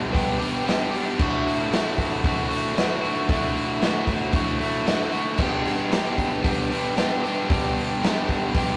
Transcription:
Already playing: G2 D3 G3 B3 D4 G4
0.12 G3 B3 D4 G4, kick
0.16 open hi-hat
0.39 B3 D4 G4, open hi-hat
0.43 G3
0.65 G3 B3 D4 G4, open hi-hat
0.69 snare
0.91 B3 D4 G4, open hi-hat
0.95 G3
1.19 D2 A2 D3 A3 F#4, kick, crash
1.47 open hi-hat
1.71 D2 A2 D3 A3 F#4, snare, open hi-hat
1.98 kick, open hi-hat
2.24 A2 D3 A3 F#4, kick, open hi-hat
2.49 A3 F#4, open hi-hat
2.53 D3
2.75 A2 D3 A3, snare, open hi-hat
2.79 F#4
3.01 D3 A3 F#4, open hi-hat
3.28 D2 A2 D3 A3, kick, open hi-hat
3.32 F#4
3.55 open hi-hat
3.81 D2 A2 D3 A3 F#4, snare, open hi-hat
4.07 kick, open hi-hat
4.31 A2 D3 A3, kick, open hi-hat
4.36 F#4
4.58 D3 A3 F#4, open hi-hat
4.85 A2 D3 A3 F#4, snare, open hi-hat
5.12 D3 A3 F#4, open hi-hat
5.38 G2 D3 G3 B3 D4 G4, kick, crash
5.65 open hi-hat
5.90 G2 D3 G3 B3 D4, snare, open hi-hat
5.94 G4
6.18 kick, open hi-hat
6.42 G3 B3 D4 G4, kick, open hi-hat
6.70 G3 B3 D4 G4, open hi-hat
6.95 G3 B3 D4 G4, snare, open hi-hat
7.24 G3 B3 D4 G4, open hi-hat
7.49 G2 D3 G3 B3 D4 G4, kick, open hi-hat
7.77 open hi-hat
8.02 G2 D3 G3 B3 D4 G4, snare, open hi-hat
8.29 kick, open hi-hat
8.54 G3 B3 D4 G4, kick, open hi-hat

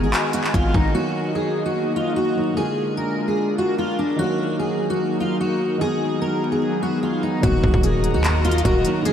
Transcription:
Already playing: D#3 G#3 B3 F#4 D#5 G#5
0.03 G#1 G#4
0.13 clap, closed hi-hat
0.33 F#4, closed hi-hat
0.44 clap
0.54 G#1 F4, kick, closed hi-hat
0.74 G#1 D#4, kick
0.92 D#3 F#3 A#3 D#4 F#4 D#5
0.96 A#3 F#4
1.35 G#4
1.66 F#4
1.96 F4
2.16 F#4
2.35 D#3 F#3 A#3 D#4
2.54 D3 G#3 D4 F4 G#4 A#4
2.58 A#3 F4
2.97 A#4
3.28 G#4
3.58 F#4
3.78 F4
3.99 D4
4.16 D#3 F#3 A#3 D#4 F#4
4.20 A#3 F#4
4.59 G#4
4.90 F#4
5.20 F4
5.40 F#4
5.78 D#3 F#3 G#3 B3 G#4
5.82 B3 F#4
6.22 A#4
6.52 G#4
6.83 F#4
7.03 F4
7.23 D#4
7.40 D#1 D#3 F#3 F#4 A#4 D#5 A#5, kick, closed hi-hat, impact
7.44 A#3 F#4
7.64 D#1, kick
7.74 D#1, kick
7.83 G#4, closed hi-hat
8.04 closed hi-hat
8.14 D#2 F#4
8.24 clap, closed hi-hat
8.45 F4, closed hi-hat
8.51 closed hi-hat
8.58 closed hi-hat
8.65 D#1 F#4, kick, closed hi-hat
8.84 D#3 F#3 A#3 D#4, closed hi-hat
9.02 D3 G#3 F4 G#4 D5 G#5, closed hi-hat
9.07 A#3 F4

